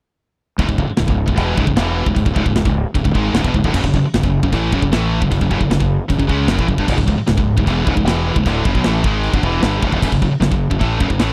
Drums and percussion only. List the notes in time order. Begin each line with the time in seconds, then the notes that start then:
0.59 kick, china
0.69 kick
0.78 kick
0.97 snare, china
1.08 kick
1.28 kick
1.37 kick, china
1.57 kick
1.67 kick
1.77 snare, china
2.06 kick
2.16 kick, china
2.26 kick
2.36 kick
2.46 kick
2.55 snare, china
2.65 kick
2.95 kick, china
3.05 kick
3.15 kick
3.34 snare, china
3.44 kick
3.54 kick
3.64 kick
3.74 kick, china, crash
3.84 kick
3.94 kick
4.14 snare, china
4.23 kick
4.43 kick
4.52 kick, china
4.72 kick
4.82 kick
4.93 snare, china
5.22 kick
5.32 kick, china
5.41 kick
5.51 kick
5.61 kick
5.71 snare, china
5.80 kick
6.10 kick, china
6.20 kick
6.29 kick
6.48 snare, china
6.59 kick
6.68 kick
6.78 kick
6.88 kick, crash, china
6.98 kick
7.08 kick
7.27 snare, china
7.38 kick
7.58 kick
7.67 kick, china
7.87 kick
7.97 kick
8.07 snare, china
8.36 kick
8.46 kick, china
8.65 kick
8.75 kick
8.84 snare, china
9.04 kick
9.23 china
9.34 kick
9.43 kick
9.62 snare, china
9.83 kick
9.93 kick
10.02 kick, crash, china
10.12 kick
10.22 kick
10.42 snare, china
10.52 kick
10.71 kick
10.81 kick, china
11.01 kick
11.10 kick
11.19 snare, china